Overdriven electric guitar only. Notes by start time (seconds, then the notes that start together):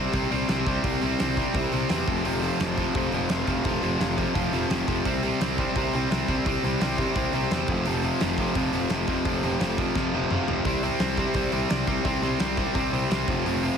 Already playing: C3 G3 C4
0.13 C3 G3 C4
0.31 C3 G3 C4
0.49 C3 G3 C4
0.66 C3 G3 C4
0.83 C3 G3 C4
1.01 C3 G3 C4
1.20 C3 G3 C4
1.37 C3 G3 C4
1.55 C3 G3 C4
1.73 C3 G3 C4
1.90 C3 G3 C4
2.07 F2 C3 F3
2.26 F2 C3 F3
2.42 F2 C3 F3
2.61 F2 C3 F3
2.78 F2 C3 F3
2.96 F2 C3 F3
3.13 F2 C3 F3
3.31 F2 C3 F3
3.47 F2 C3 F3
3.65 F2 C3 F3
3.82 F2 C3 F3
4.00 F2 C3 F3
4.17 F2 C3 F3
4.35 F2 C3 F3
4.53 F2 C3 F3
4.70 F2 C3 F3
4.88 F2 C3 F3
5.05 C3 G3 C4
5.23 C3 G3 C4
5.41 C3 G3 C4
5.59 C3 G3 C4
5.77 C3 G3 C4
5.94 C3 G3 C4
6.11 C3 G3 C4
6.29 C3 G3 C4
6.47 C3 G3 C4
6.65 C3 G3 C4
6.82 C3 G3 C4
6.99 C3 G3 C4
7.17 C3 G3 C4
7.34 C3 G3 C4
7.52 C3 G3 C4
7.69 F2 C3 F3
7.86 F2 C3 F3
8.04 F2 C3 F3
8.22 F2 C3 F3
8.39 F2 C3 F3
8.56 F2 C3 F3
8.73 F2 C3 F3
8.91 F2 C3 F3
9.08 F2 C3 F3
9.26 F2 C3 F3
9.43 F2 C3 F3
9.61 F2 C3 F3
9.78 F2 C3 F3
9.96 F2 C3 F3
10.14 F2 C3 F3
10.30 F2 C3 F3
10.48 F2 C3 F3
10.66 C3 G3 C4
10.83 C3 G3 C4
11.00 C3 G3 C4
11.18 C3 G3 C4
11.35 C3 G3 C4
11.52 C3 G3 C4
11.70 C3 G3 C4
11.87 C3 G3 C4
12.05 C3 G3 C4
12.22 C3 G3 C4
12.39 C3 G3 C4
12.57 C3 G3 C4
12.74 C3 G3 C4
12.93 C3 G3 C4
13.10 C3 G3 C4
13.28 F2 C3 F3
13.46 F2 C3 F3
13.64 F2 C3 F3